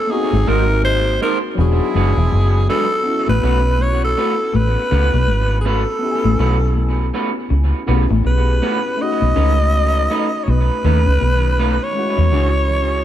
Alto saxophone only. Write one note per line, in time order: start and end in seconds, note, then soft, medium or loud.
0.00 0.12 A4 medium
0.11 0.50 G#4 loud
0.48 0.84 A#4 loud
0.85 1.19 C5 loud
1.23 1.39 A#4 medium
1.60 2.66 G#4 medium
2.70 3.25 A4 loud
3.29 3.83 B4 loud
3.82 4.03 C#5 loud
4.04 4.57 A4 medium
4.55 5.60 B4 loud
5.61 5.68 G#4 medium
5.67 7.14 A4 medium
8.27 9.03 B4 medium
9.01 10.45 D#5 loud
10.43 10.51 C#5 medium
10.50 11.85 B4 loud
11.83 13.04 C#5 loud